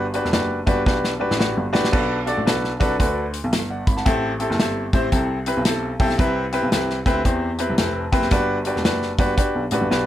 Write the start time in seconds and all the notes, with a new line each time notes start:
Already playing: G1
0.14 D4 F#4 G4 B4, closed hi-hat
0.24 E1, snare
0.32 F#1 D4 F#4 G4 B4, snare, closed hi-hat
0.67 G1 D4 F#4 G4 B4, kick, closed hi-hat
0.86 B1 D4 F#4 G4 B4, kick, snare
1.05 snare
1.20 A1 D4 F#4 G4 B4
1.31 A1, snare
1.39 D4 F#4 G4 B4, snare
1.57 G1
1.73 A#1 D4 F#4 G4 B4, snare
1.84 snare
1.92 B1 D4 F#4 A4 B4, kick, crash
2.26 D4 F#4 A4 D5, closed hi-hat
2.37 A1
2.45 B1 D4 F#4 A4 B4, snare, closed hi-hat
2.65 snare
2.80 C2 D4 F#4 A4 B4, kick, closed hi-hat
2.99 D2 D4 F#4 A4 B4, kick, closed hi-hat
3.34 closed hi-hat
3.44 B1
3.53 G1, snare, closed hi-hat
3.70 D5 F#5
3.87 G#1 B5, kick, closed hi-hat
3.97 F#5 A5, snare
4.06 A1 C4 E4 G4 A4, kick, closed hi-hat
4.40 C4 E4 G4 A4, closed hi-hat
4.50 F#1, snare
4.59 G1 C4 E4 G4 A4, snare, closed hi-hat
4.93 A1 C4 E4 G4 C5, kick, closed hi-hat
5.12 C2 C4 E4 G4 A4, kick, closed hi-hat
5.46 C4 E4 G4 B4, closed hi-hat
5.57 B1
5.65 C4 E4 G4 A4, snare, closed hi-hat
6.00 B1 C4 E4 G4 A4, kick, open hi-hat
6.10 snare
6.18 C2 C4 E4 G4 B4, kick, closed hi-hat
6.53 C4 E4 G4 B4, closed hi-hat
6.62 B1
6.72 C2 C4 E4 G4 B4, snare, closed hi-hat
6.90 snare
7.06 D2 C4 E4 G4 B4, kick, closed hi-hat
7.25 E2 C4 E4 G4 C5, kick, closed hi-hat
7.59 C4 E4 G4 B4, closed hi-hat
7.70 C2
7.78 F1 C4 E4 G4 B4, snare, closed hi-hat
8.12 F#1 C4 E4 G4 B4, kick, closed hi-hat
8.22 snare
8.31 G1 D4 F#4 G4 B4, kick, closed hi-hat
8.65 D4 F#4 G4 B4, closed hi-hat
8.75 E1, snare
8.84 F#1 D4 F#4 G4 B4, snare, closed hi-hat
9.02 snare
9.18 G1 D4 F#4 G4 B4, kick, closed hi-hat
9.37 D4 F#4 G4 B4, kick, closed hi-hat
9.55 B1
9.71 A1 D4 F#4 G4 B4, closed hi-hat
9.81 G1
9.90 B1 D4 F#4 G4 B4, snare